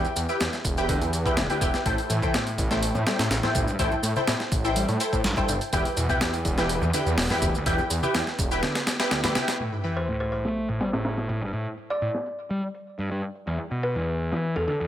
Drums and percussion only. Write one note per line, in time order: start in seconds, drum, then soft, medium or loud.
0.05 shaker soft
0.16 closed hi-hat medium
0.16 shaker medium
0.29 shaker soft
0.40 snare loud
0.40 closed hi-hat medium
0.40 shaker soft
0.53 snare soft
0.53 shaker soft
0.65 kick medium
0.65 closed hi-hat medium
0.65 shaker medium
0.77 shaker soft
0.89 kick medium
0.89 closed hi-hat medium
0.89 shaker soft
1.02 closed hi-hat soft
1.02 shaker soft
1.13 closed hi-hat medium
1.13 shaker medium
1.26 kick medium
1.26 shaker soft
1.37 snare medium
1.37 closed hi-hat medium
1.37 shaker soft
1.50 closed hi-hat soft
1.50 shaker soft
1.61 kick medium
1.61 closed hi-hat medium
1.61 shaker medium
1.74 snare soft
1.74 shaker soft
1.86 kick loud
1.86 closed hi-hat medium
1.86 shaker soft
1.98 closed hi-hat soft
1.98 shaker soft
2.10 closed hi-hat medium
2.10 shaker medium
2.22 kick medium
2.22 high conga medium
2.22 shaker soft
2.34 snare loud
2.34 closed hi-hat medium
2.34 shaker soft
2.47 closed hi-hat soft
2.47 shaker soft
2.58 kick medium
2.58 closed hi-hat medium
2.58 high conga medium
2.58 shaker medium
2.71 snare medium
2.71 shaker soft
2.83 closed hi-hat medium
2.83 shaker soft
2.95 low conga medium
2.95 shaker soft
3.07 snare loud
3.07 closed hi-hat medium
3.07 shaker medium
3.19 snare loud
3.19 closed hi-hat medium
3.19 shaker soft
3.31 snare loud
3.31 closed hi-hat medium
3.31 shaker soft
3.43 snare medium
3.43 low conga medium
3.43 shaker soft
3.54 kick medium
3.54 closed hi-hat medium
3.54 high conga medium
3.54 shaker medium
3.68 shaker soft
3.79 kick loud
3.79 closed hi-hat medium
3.79 shaker soft
3.92 low conga medium
3.92 shaker soft
4.03 closed hi-hat medium
4.03 shaker medium
4.16 high conga medium
4.16 shaker soft
4.27 snare loud
4.27 closed hi-hat medium
4.27 shaker soft
4.40 snare soft
4.40 shaker soft
4.52 kick medium
4.52 closed hi-hat medium
4.52 high conga medium
4.52 shaker medium
4.65 shaker soft
4.76 closed hi-hat medium
4.76 shaker soft
4.89 closed hi-hat soft
4.89 shaker soft
5.00 closed hi-hat medium
5.00 shaker medium
5.13 kick medium
5.13 shaker soft
5.24 snare loud
5.24 closed hi-hat medium
5.24 shaker soft
5.36 kick medium
5.36 low conga medium
5.36 shaker soft
5.49 closed hi-hat medium
5.49 high conga medium
5.49 shaker medium
5.61 closed hi-hat soft
5.61 shaker soft
5.73 kick loud
5.73 closed hi-hat medium
5.73 shaker soft
5.85 closed hi-hat soft
5.85 shaker soft
5.97 closed hi-hat medium
5.97 shaker medium
6.09 kick medium
6.09 high conga medium
6.09 shaker soft
6.21 snare loud
6.21 closed hi-hat medium
6.21 shaker soft
6.34 closed hi-hat soft
6.34 shaker soft
6.45 kick medium
6.45 closed hi-hat medium
6.45 high conga medium
6.45 shaker medium
6.58 snare medium
6.58 shaker soft
6.69 closed hi-hat medium
6.69 shaker soft
6.82 low conga medium
6.82 shaker soft
6.93 closed hi-hat medium
6.93 shaker medium
7.07 shaker soft
7.18 snare loud
7.18 open hi-hat medium
7.18 shaker soft
7.30 snare medium
7.30 low conga medium
7.30 shaker soft
7.42 kick medium
7.42 closed hi-hat medium
7.42 high conga medium
7.42 shaker medium
7.55 shaker soft
7.66 kick loud
7.66 closed hi-hat medium
7.66 shaker soft
7.78 low conga medium
7.78 shaker soft
7.90 closed hi-hat medium
7.90 shaker medium
8.03 high conga medium
8.03 shaker soft
8.15 snare loud
8.15 closed hi-hat medium
8.15 shaker soft
8.27 snare soft
8.27 shaker soft
8.39 kick medium
8.39 closed hi-hat medium
8.39 high conga medium
8.39 shaker medium
8.51 shaker soft
8.63 snare loud
8.63 closed hi-hat medium
8.63 shaker soft
8.75 snare loud
8.75 closed hi-hat medium
8.75 shaker soft
8.87 snare loud
8.87 closed hi-hat medium
8.87 shaker medium
9.00 snare loud
9.00 closed hi-hat medium
9.00 shaker soft
9.11 snare loud
9.11 closed hi-hat medium
9.11 shaker soft
9.24 snare loud
9.24 closed hi-hat medium
9.24 low conga medium
9.24 shaker soft
9.35 snare loud
9.35 closed hi-hat medium
9.35 high conga medium
9.35 shaker medium
9.48 snare loud
9.48 closed hi-hat medium
9.48 shaker soft
9.60 closed hi-hat medium
9.72 closed hi-hat soft
9.84 closed hi-hat medium
10.08 closed hi-hat medium
10.32 closed hi-hat medium
10.45 snare soft
10.56 closed hi-hat medium
10.81 snare medium
10.81 closed hi-hat medium
10.93 snare medium
10.93 closed hi-hat medium
11.05 snare medium
11.05 closed hi-hat medium
11.17 snare soft
11.29 closed hi-hat medium
11.53 closed hi-hat medium
11.78 closed hi-hat medium
12.02 closed hi-hat medium
12.14 snare soft
12.26 closed hi-hat medium
12.50 closed hi-hat medium
12.63 closed hi-hat soft
12.74 closed hi-hat medium
12.99 closed hi-hat medium
13.23 closed hi-hat medium
13.35 closed hi-hat soft
13.47 closed hi-hat medium
13.59 closed hi-hat soft
13.71 closed hi-hat medium
13.95 closed hi-hat medium
14.08 closed hi-hat soft
14.19 closed hi-hat medium
14.32 snare soft
14.44 closed hi-hat medium
14.68 closed hi-hat medium